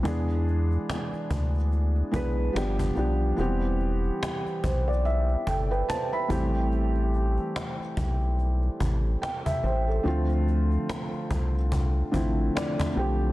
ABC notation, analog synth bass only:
X:1
M:4/4
L:1/8
Q:"Swing 16ths" 1/4=72
K:Am
V:1 name="Analog synth bass" clef=bass
E,,2 z D,,2 B,,, G,,, B,,, | E,,,2 z B,,,2 G,,, z A,,,- | A,,,2 z B,,,2 A,,, z A,,, | D,,2 z C,,2 A,,, z B,,, |]